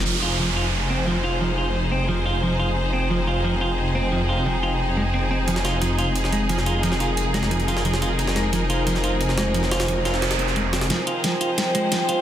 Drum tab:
HH |x-x-x-x-x-x-x-x-|x-x-x-x-x-x-x-x-|x-x-x-x-x-x-x-x-|x-x-x-x-x-x-x-x-|
SD |----------------|----------------|----------------|----------------|

HH |x-x-x-x-x-x-x-x-|x-x-x-x-xxx-x-x-|x-x-x-x-x-x-x-x-|x-xxx-x-xxx-x-xx|
SD |-oo------o---o--|-o----oo---o-o--|-oo------o---oo-|-ooo--oooo-o--oo|

HH |x-x-x-x-x-x-x-x-|
SD |o---o---o---o---|